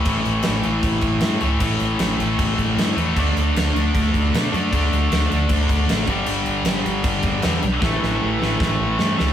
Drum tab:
CC |xxxxxxxx|xxxxxxxx|xxxxxxxx|xxxxxxxx|
SD |--o---o-|--o---o-|--o---o-|--o---o-|
BD |o---oo--|o---oo--|o---oo--|o---oo-o|

CC |xxxxxxxx|--------|
SD |--o---o-|oo-oo-oo|
BD |----oo--|o---o---|